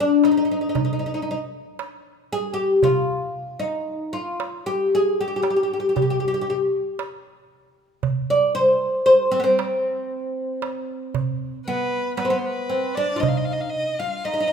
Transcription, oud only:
0.00 0.24 D4 medium
0.25 0.30 D#4 medium
0.31 0.36 D#4 medium
0.37 0.44 D#4 medium
0.45 0.50 D#4 soft
0.51 0.60 D#4 medium
0.61 0.68 D#4 soft
0.69 0.74 D#4 medium
0.75 0.83 D#4 soft
0.85 0.92 D#4 soft
0.93 0.98 D#4 soft
0.99 1.05 D#4 soft
1.06 1.13 D#4 medium
1.14 1.21 D#4 medium
1.22 1.29 D#4 medium
1.31 1.38 D#4 medium
2.32 2.53 G#4 loud
2.54 2.83 G4 medium
2.84 3.64 F4 medium
3.59 4.14 D#4 medium
4.13 4.66 F4 medium
4.66 4.94 G4 medium
4.95 5.19 G#4 medium
5.21 5.26 G4 medium
5.28 5.34 G4 medium
5.36 5.41 G4 medium
5.42 5.48 G4 medium
5.50 5.55 G4 medium
5.56 5.62 G4 soft
5.63 5.70 G4 medium
5.73 5.79 G4 soft
5.80 5.86 G4 medium
5.89 5.94 G4 soft
5.96 6.01 G4 medium
6.02 6.08 G4 soft
6.10 6.16 G4 medium
6.20 6.25 G4 soft
6.28 6.33 G4 medium
6.34 6.39 G4 medium
6.41 6.47 G4 medium
6.50 6.55 G4 medium
8.30 8.54 D5 medium
8.55 9.05 C5 loud
9.06 9.31 C5 medium
9.32 9.39 C4 medium
9.40 9.43 B3 medium
9.44 11.58 C4 medium
11.68 12.16 B3 medium
12.17 12.25 B3 medium
12.25 12.32 C4 medium
12.30 12.70 B3 medium
12.69 12.97 C4 medium
12.97 13.14 D4 medium
13.16 13.99 D#4 medium
13.16 13.20 F4 medium
14.00 14.25 F4 medium
14.25 14.32 D#4 medium
14.34 14.39 D#4 medium
14.40 14.46 D#4 medium
14.47 14.53 D#4 medium

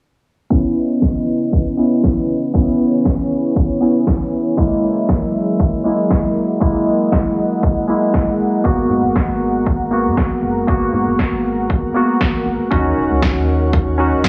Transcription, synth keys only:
0.50 1.75 B3 medium
0.50 1.76 C#4 medium
0.50 1.76 E4 loud
1.77 2.51 B3 medium
1.77 2.52 C#4 medium
1.77 2.52 E4 medium
2.54 3.79 B3 medium
2.54 3.79 C#4 medium
2.54 3.80 E4 loud
3.81 4.55 B3 medium
3.81 4.55 C#4 medium
3.81 4.56 E4 medium
4.57 5.82 G#3 medium
4.57 5.82 A#3 medium
4.57 5.83 E4 loud
5.84 6.58 G#3 medium
5.84 6.59 A#3 medium
5.84 6.59 E4 medium
6.60 7.85 G#3 medium
6.60 7.86 A#3 medium
6.60 7.86 E4 loud
7.88 8.62 G#3 medium
7.88 8.62 A#3 medium
7.88 8.63 E4 medium
8.64 9.89 A#3 medium
8.64 9.89 B3 medium
8.64 9.90 F#4 loud
9.91 10.65 A#3 medium
9.91 10.66 B3 medium
9.91 10.66 F#4 medium
10.67 11.92 A#3 medium
10.67 11.93 B3 medium
10.67 11.93 F#4 loud
11.94 12.68 A#3 medium
11.94 12.69 B3 medium
11.94 12.69 F#4 medium
12.71 13.96 C#4 loud
12.71 13.96 D#4 medium
12.71 13.97 F#4 loud
13.98 14.29 C#4 medium
13.98 14.29 D#4 medium
13.98 14.29 F#4 medium

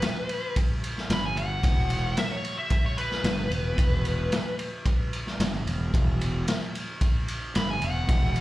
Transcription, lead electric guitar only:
0.00 0.54 B4 loud
1.13 1.25 B5 medium
1.25 1.38 G#5 medium
1.37 2.15 F#5 loud
2.18 2.32 E5 medium
2.32 2.57 C#5 medium
2.59 2.84 E5 medium
2.86 2.98 C#5 medium
2.98 4.55 B4 loud
7.56 7.70 B5 medium
7.70 7.83 G#5 medium
7.84 8.41 F#5 loud

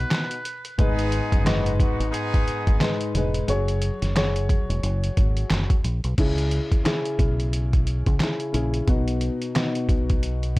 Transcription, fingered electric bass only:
0.79 1.19 G#1 loud
1.32 1.83 F#1 medium
2.00 2.10 G#1 loud
2.67 2.78 G#1 loud
3.15 3.40 E1 medium
3.48 3.89 F#1 loud
4.02 4.53 F#1 medium
4.69 4.80 E1 medium
4.83 5.09 F#1 loud
5.17 5.43 G#1 medium
5.51 5.66 F#1 loud
5.84 5.99 A#1 medium
6.04 6.15 B1 medium
6.18 6.59 C#2 loud
7.19 8.02 B1 loud
8.06 8.17 C#2 loud
8.54 8.80 A#1 medium
8.88 9.28 B1 loud
9.89 10.59 B1 medium

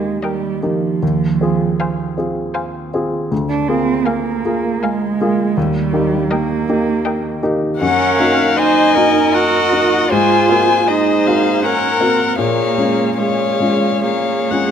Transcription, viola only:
0.24 0.82 A#4 soft
1.80 2.36 C5 soft
2.55 3.12 C5 soft
4.06 4.64 A#4 soft
4.83 5.38 A#4 soft
6.31 6.86 A#4 medium
7.06 7.62 A#4 medium
7.80 8.58 A#4 soft
8.57 8.96 C5 medium
8.95 10.11 A#4 soft
10.11 10.87 G#4 soft
10.89 11.66 G#4 soft
11.65 12.38 A#4 soft
12.39 13.14 G#4 soft
13.18 14.02 G#4 soft
14.04 14.71 G#4 soft

